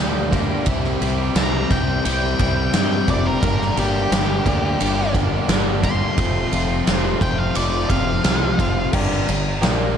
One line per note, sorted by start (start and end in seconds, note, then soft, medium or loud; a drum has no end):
0.00 0.55 D2 medium
0.00 0.30 G2 medium
0.00 0.31 D3 medium
0.00 0.32 G3 medium
0.00 0.31 A#3 medium
0.00 0.31 D4 medium
0.00 0.33 G4 medium
0.31 0.64 G2 medium
0.31 0.65 D3 medium
0.31 0.67 G3 medium
0.31 0.65 A#3 medium
0.31 0.65 D4 medium
0.31 0.68 G4 medium
0.31 kick medium
0.31 ride medium
0.66 0.95 C2 medium
0.66 0.99 C3 medium
0.66 1.00 E3 medium
0.66 1.01 G3 loud
0.66 1.01 C4 loud
0.66 1.01 E4 loud
0.66 1.02 G4 loud
0.66 kick loud
0.66 ride loud
0.84 snare soft
1.00 1.30 C2 medium
1.00 1.34 C3 medium
1.00 1.35 E3 medium
1.00 1.36 G3 medium
1.00 1.35 C4 medium
1.00 1.35 E4 medium
1.00 1.37 G4 medium
1.00 ride medium
1.35 1.64 C2 medium
1.35 1.69 C3 loud
1.35 1.69 E3 loud
1.35 1.71 G3 loud
1.35 1.71 C4 loud
1.35 1.70 E4 loud
1.35 1.71 G4 loud
1.35 1.70 A#5 medium
1.35 snare loud
1.35 ride medium
1.70 1.99 C2 medium
1.70 2.02 C3 medium
1.70 2.03 E3 medium
1.70 2.03 G3 medium
1.70 2.05 C4 medium
1.70 2.03 E4 loud
1.70 2.04 G4 loud
1.70 2.04 G5 medium
1.70 kick medium
1.70 ride medium
2.04 2.34 C2 medium
2.04 2.37 C3 medium
2.04 2.39 E3 medium
2.04 2.39 G3 medium
2.04 2.40 C4 medium
2.04 2.39 E4 medium
2.04 2.40 G4 loud
2.04 2.72 G5 loud
2.04 ride medium
2.39 2.68 C2 medium
2.39 2.72 C3 medium
2.39 2.72 E3 medium
2.39 2.73 G3 loud
2.39 2.75 C4 loud
2.39 2.74 E4 loud
2.39 2.74 G4 medium
2.39 kick medium
2.39 ride medium
2.73 3.02 G2 medium
2.73 3.06 C3 medium
2.73 3.06 E3 medium
2.73 3.07 G3 medium
2.73 3.09 C4 loud
2.73 3.08 E4 medium
2.73 3.08 G4 loud
2.73 3.08 G5 medium
2.73 snare loud
2.73 ride medium
3.07 3.37 F1 medium
3.07 3.40 C3 medium
3.07 3.40 E3 medium
3.07 3.40 G3 medium
3.07 3.42 C4 medium
3.07 3.41 E4 medium
3.07 3.41 G4 loud
3.07 3.26 D5 medium
3.07 kick medium
3.07 ride medium
3.26 3.76 A#4 medium
3.40 3.71 G1 medium
3.40 3.75 G2 medium
3.40 3.75 D3 medium
3.40 3.76 G3 loud
3.40 3.76 A#3 loud
3.40 3.77 D4 loud
3.40 3.77 G4 loud
3.40 kick loud
3.40 ride medium
3.61 snare soft
3.76 4.06 G1 medium
3.76 4.10 G2 medium
3.76 4.10 D3 medium
3.76 4.11 G3 medium
3.76 4.11 A#3 medium
3.76 4.11 D4 medium
3.76 4.12 G4 medium
3.76 5.12 G4 loud
3.76 ride medium
4.11 4.40 G1 medium
4.11 4.44 G2 loud
4.11 4.45 D3 loud
4.11 4.45 G3 loud
4.11 4.46 A#3 loud
4.11 4.46 D4 loud
4.11 4.47 G4 loud
4.11 snare loud
4.11 ride medium
4.45 4.75 D2 medium
4.45 4.78 G2 loud
4.45 4.80 D3 loud
4.45 4.80 G3 loud
4.45 4.80 A#3 loud
4.45 4.81 D4 medium
4.45 4.81 G4 medium
4.45 kick medium
4.45 ride medium
4.80 5.37 G1 medium
4.80 5.14 G2 medium
4.80 5.14 D3 medium
4.80 5.15 G3 medium
4.80 5.15 A#3 medium
4.80 5.16 D4 medium
4.80 5.16 G4 medium
4.80 ride loud
5.14 5.46 G2 medium
5.14 5.47 D3 loud
5.14 5.48 G3 loud
5.14 5.49 A#3 loud
5.14 5.49 D4 loud
5.14 5.49 G4 loud
5.14 kick medium
5.14 ride medium
5.48 6.05 G1 medium
5.48 5.81 G2 medium
5.48 5.82 D3 medium
5.48 5.82 G3 medium
5.48 5.83 A#3 medium
5.48 5.83 D4 loud
5.48 5.84 G4 medium
5.48 snare loud
5.48 ride medium
5.83 6.15 G2 medium
5.83 6.16 D3 medium
5.83 6.16 G3 medium
5.83 6.16 A#3 medium
5.83 6.16 D4 medium
5.83 6.17 G4 medium
5.83 7.17 C6 loud
5.83 kick medium
5.83 ride medium
6.17 6.46 F1 medium
6.17 6.50 F2 loud
6.17 6.51 C3 loud
6.17 6.51 F3 medium
6.17 6.52 A3 loud
6.17 6.52 C4 loud
6.17 6.53 F4 loud
6.17 kick loud
6.17 ride loud
6.51 6.80 F1 medium
6.51 6.84 F2 medium
6.51 6.85 C3 medium
6.51 6.86 F3 medium
6.51 6.86 A3 medium
6.51 6.86 C4 medium
6.51 6.87 F4 loud
6.51 ride medium
6.86 7.15 F1 medium
6.86 7.19 F2 medium
6.86 7.20 C3 loud
6.86 7.20 F3 loud
6.86 7.21 A3 loud
6.86 7.21 C4 loud
6.86 7.21 F4 loud
6.86 snare medium
6.86 ride medium
7.20 7.49 F1 loud
7.20 7.53 F2 medium
7.20 7.54 C3 loud
7.20 7.54 F3 medium
7.20 7.55 A3 loud
7.20 7.55 C4 medium
7.20 7.55 F4 loud
7.20 7.38 G5 loud
7.20 kick medium
7.20 ride medium
7.38 7.56 F5 medium
7.54 7.85 F1 medium
7.54 7.88 F2 medium
7.54 7.90 C3 loud
7.54 7.90 F3 loud
7.54 7.90 A3 loud
7.54 7.91 C4 loud
7.54 7.91 F4 loud
7.54 7.89 D5 loud
7.54 ride medium
7.90 8.18 F1 medium
7.90 8.23 F2 medium
7.90 8.23 C3 loud
7.90 8.24 F3 medium
7.90 8.24 A3 loud
7.90 8.24 C4 loud
7.90 8.25 F4 loud
7.90 8.90 F5 medium
7.90 kick medium
7.90 ride medium
8.24 8.53 C2 medium
8.24 8.57 F2 medium
8.24 8.58 C3 medium
8.24 8.58 F3 medium
8.24 8.59 A3 medium
8.24 8.59 C4 medium
8.24 8.60 F4 loud
8.24 snare loud
8.24 ride medium
8.58 8.87 F1 medium
8.58 8.91 F2 medium
8.58 8.91 C3 medium
8.58 8.91 F3 medium
8.58 8.92 A3 medium
8.58 8.92 C4 medium
8.58 8.92 F4 medium
8.58 kick medium
8.58 ride medium
8.92 9.25 G1 medium
8.92 9.26 G2 loud
8.92 9.27 D3 loud
8.92 9.27 G3 medium
8.92 9.48 A#4 medium
8.92 9.48 D5 medium
8.92 9.48 G5 medium
8.92 kick loud
8.92 crash loud
9.12 snare soft
9.28 9.60 G1 medium
9.28 9.55 G2 medium
9.28 9.55 D3 medium
9.28 ride medium
9.61 9.94 A#1 loud
9.61 9.95 A#2 medium
9.61 9.95 F3 loud
9.61 9.95 A#3 loud
9.61 9.97 A#4 medium
9.61 9.97 D5 medium
9.61 9.97 G5 loud
9.61 snare loud
9.61 ride medium